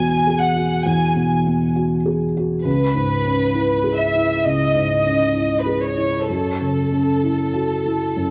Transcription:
Already playing: felt piano E2 B2 B3 F#4, violin section G#5
0.27 felt piano G#4
0.41 violin section F#5
0.56 felt piano F#4
0.86 felt piano E2, violin section G#5
1.16 felt piano B2
1.47 felt piano B3
1.76 felt piano F#4
2.06 felt piano G#4
2.37 felt piano F#4
2.64 felt piano C#2, violin section B4
2.95 felt piano G#2
3.25 felt piano C#4
3.55 felt piano E4
3.84 felt piano G#4
4.00 violin section E5
4.15 felt piano E4
4.44 felt piano C#2, violin section D#5
4.75 felt piano G#2
5.06 felt piano C#4
5.36 felt piano E4
5.59 violin section B4
5.66 felt piano G#4
5.83 violin section C#5
5.98 felt piano E4
6.29 felt piano F#2, violin section A4
6.61 felt piano C#3
6.92 felt piano C#4
7.24 felt piano E4
7.54 felt piano F#4
7.86 felt piano E4
8.17 felt piano F#2

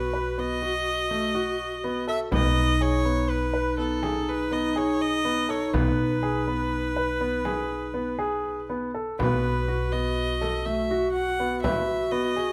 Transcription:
Already playing: upright bass B1, soft synth lead F#4, violin B4
0.13 grand piano B4
0.38 grand piano B3, violin D#5
0.62 grand piano F#4
1.11 grand piano A3
1.35 grand piano F#4
1.84 grand piano B3
2.07 grand piano A4, violin E5
2.31 upright bass B1, grand piano B3, soft synth lead D#4, violin D#5, frame drum
2.81 grand piano G#4, violin C#5
3.05 grand piano B3
3.30 violin B4, frame drum
3.54 grand piano B4
3.78 grand piano B3, violin A4
4.03 grand piano G#4, frame drum
4.29 violin B4
4.51 grand piano B3, violin D#5
4.76 grand piano G#4, violin C#5, frame drum
5.01 violin D#5, frame drum
5.25 grand piano B3
5.49 grand piano A4, violin C#5, frame drum
5.73 upright bass B1, grand piano B3, violin B4, frame drum
5.98 frame drum
6.23 grand piano G#4
6.47 grand piano B3, frame drum
6.96 grand piano B4, frame drum
7.21 grand piano B3
7.45 grand piano G#4, frame drum
7.94 grand piano B3
8.19 grand piano G#4
8.45 frame drum
8.70 grand piano B3, frame drum
8.94 grand piano A4
9.19 upright bass B1, grand piano B3, soft synth lead F#4, violin B4, frame drum
9.68 grand piano F#4
9.92 grand piano B3, violin D#5, frame drum
10.41 grand piano A4, frame drum
10.65 grand piano A3, violin E5
10.91 grand piano F#4, frame drum
11.12 violin F#5, frame drum
11.40 grand piano B3
11.62 grand piano B4, violin E5, frame drum
12.11 grand piano B3, violin D#5
12.36 grand piano G#4

